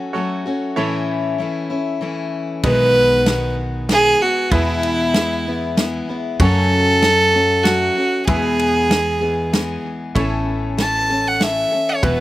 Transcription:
Already playing: F#3 A3 C#4 F#4 A4 C#5
0.13 F#3 A3 C#4 F#4 A4 C#5
0.17 F#4
0.46 F#3 A3 C#4 F#4
0.76 A2 E3 A3 C#4 E4 A4 C#5
1.38 E3 A3 C#4 E4
1.70 A3 C#4 E4
2.01 E3 A3 C#4 E4
2.63 B1 B2 D#3 G#3 B3 D#4 F#4 G#4 B4, kick, ride
3.26 D#3 G#3 B3 F#4, snare, ride
3.89 D#3 G#3 B3 F#4 G#4, snare, ride
4.21 G#3 B3 F#4
4.51 E2 B2 E3 G#3 B3 E4 G#4 B4, kick, ride
4.83 ride
5.14 E3 G#3 B3 E4, snare, ride
5.47 E3 G#3 B3 E4
5.77 E3 G#3 B3 E4, snare, ride
6.09 E3 G#3 B3 E4
6.40 F#2 C#3 F#3 A3 C#4 F#4 A4 C#5, kick, ride
7.02 F#3 A3 C#4 F#4, snare, ride
7.33 F#3 A3 C#4 F#4
7.63 F#3 A3 C#4 F#4, snare, ride
7.67 F#4
7.96 F#3 A3 C#4 F#4
8.25 E2 B2 E3 G#3 B3 E4 G#4 B4, kick, ride
8.59 ride
8.89 E3 G#3 B3 G#4, snare, ride
9.21 E3 G#3 B3 G#4
9.53 E3 G#3 B3 G#4, snare, ride
10.15 A1 A2 E3 A3 C#4 E4 A4 C#5, kick, ride
10.77 E3 A3 C#4 A4 A5, snare, ride
11.09 A3 C#4 A4
11.27 F#5
11.40 E3 A3 C#4 A4 E5, snare, ride
11.72 A3 C#4 A4
11.89 C#5
12.02 E1 E2 B2 E3 B3 E4 F#4 B4, kick, ride

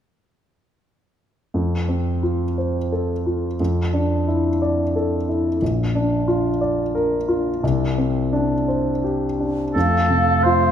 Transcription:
1.54 F2
1.88 C4
2.23 F4
2.58 C5
2.92 A4
3.26 F4
3.60 F2
3.93 D4
4.28 E4
4.62 D5
4.96 A4
5.29 E4
5.62 A#1
5.95 D4
6.28 F4
6.61 D5
6.95 A#4
7.28 F4
7.63 C2
7.98 C4
8.33 D4
8.68 C5
9.04 G4
9.40 D4
9.74 F2 A3 A4 F5
10.10 C3
10.44 F4 C5

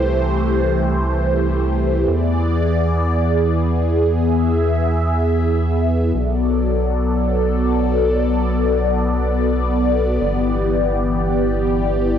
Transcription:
Already playing: C2 E3 A3 G4 C5
2.08 E2 B3 G#4 D5
4.11 E5
6.15 B1 F#3 A4 D5
10.21 G1 E3 G4

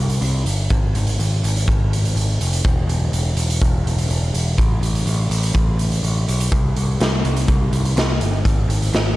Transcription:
Already playing: C2
0.09 closed hi-hat
0.21 C2, closed hi-hat
0.46 G1, closed hi-hat
0.70 G#1, kick, closed hi-hat
0.95 G#1, closed hi-hat
1.07 closed hi-hat
1.19 G#1, closed hi-hat
1.44 G#1, closed hi-hat
1.56 closed hi-hat
1.68 G#1, kick, closed hi-hat
1.93 closed hi-hat
2.05 closed hi-hat
2.15 G#1, closed hi-hat
2.41 F1, closed hi-hat
2.53 closed hi-hat
2.65 E1, kick, closed hi-hat
2.88 E1, closed hi-hat
3.12 E1, closed hi-hat
3.35 E1, closed hi-hat
3.50 closed hi-hat
3.61 E1, kick, closed hi-hat
3.85 E1, closed hi-hat
3.98 closed hi-hat
4.09 E1, closed hi-hat
4.34 E1, closed hi-hat
4.58 A1, kick, closed hi-hat
4.81 A1, closed hi-hat
4.95 closed hi-hat
5.06 A1, closed hi-hat
5.30 A1, closed hi-hat
5.43 closed hi-hat
5.54 A1, kick, closed hi-hat
5.79 closed hi-hat
5.92 closed hi-hat
6.03 A1, closed hi-hat
6.28 B1, closed hi-hat
6.40 closed hi-hat
6.52 C2, kick, closed hi-hat
6.76 C2, closed hi-hat
7.00 C2, snare, closed hi-hat
7.25 C2, closed hi-hat
7.37 closed hi-hat
7.48 C2, kick, closed hi-hat
7.72 C2, closed hi-hat
7.85 closed hi-hat
7.96 C2, snare, closed hi-hat
8.21 G1, closed hi-hat
8.45 G#1, kick, closed hi-hat
8.68 G#1, closed hi-hat
8.82 closed hi-hat
8.93 G#1, snare, closed hi-hat

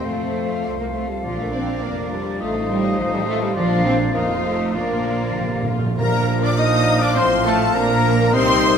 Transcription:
Already playing: C4 C5
0.02 F2 F3 A3 A4 F5
0.07 F4
0.22 A4
0.35 C5
0.51 F5
0.63 C2 C5 D5
0.79 A#3 A4 A#4
0.94 A3 F4 A4 C5
1.09 G3 G4 A4
1.23 A#1 A#2 F3 D4 F4 A#4 D5
1.39 A3 A4 A#4
1.53 C4 C5 D5
1.69 F5
1.82 F1 A#3 A#4 D5
1.97 A#4
2.10 G3 F4 G4
2.14 G3
2.26 A#4
2.39 A1 F3 A3 D#4 F4 A4 C5 D#5 F5
2.55 A4
2.69 G3 G4 C5
2.83 D#5
2.97 A1 F3 F4 C5
3.12 G3 G4 A4
3.27 A3 F4 A4
3.41 G3 G4 A4
3.55 A#1 A#2 F3 D4 F4 A#4 D5 F5
3.85 C4 C5
4.13 F1 F3 A#3 D#4 F4 A#4 C5 D#5 F5
4.45 A3 A4
4.74 A#1 A#2 F3 A#3 D4 F4 A#4 D5 F5
4.84 A#2
4.92 A#2
5.00 A#2
5.08 A#2
5.15 A#2
5.23 A#2
5.31 A#2
5.37 A#2 G4
5.47 A#2
5.55 A#2
5.62 A#2
5.67 A#2 F4
5.78 A#2
5.86 A#2
5.97 A#1 A#2 F3 A#3 D4 A#4 D5 F5 A#5
6.42 D4 D5 D6
6.57 D#4 D#5 D#6
7.01 D4 D5 D6
7.15 A1 A2 F3 C4 C5 C6
7.45 A3 A4 A5
7.75 A#1 A#2 F3 A#3 D4 A#4 D5 A#5
8.33 C2 C3 G3 C4 D#4 A#4 C5 D#5 C6

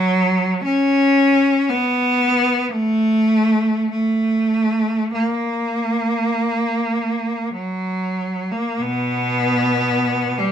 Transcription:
Already playing: F#3
0.63 C#4
1.69 B3
2.72 A3
3.91 A3
5.14 A#3
7.54 F#3
8.51 A#3
8.81 B2 B3
10.39 G3

